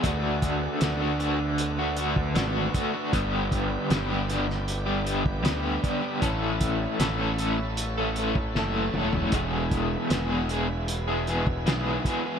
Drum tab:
HH |x-x-x-x-x-x-x-x-|x-x-x-x-x-x-x-x-|x-x-x-x-x-x-----|x-x-x-x-x-x-x-x-|
SD |----o-------o---|----o-oo----o---|----o-------o---|----o-------o---|
T2 |----------------|----------------|--------------o-|----------------|
FT |----------------|----------------|---------------o|----------------|
BD |o-o--------o--o-|o-o--------o--o-|o-o--------o----|o-o--------o--o-|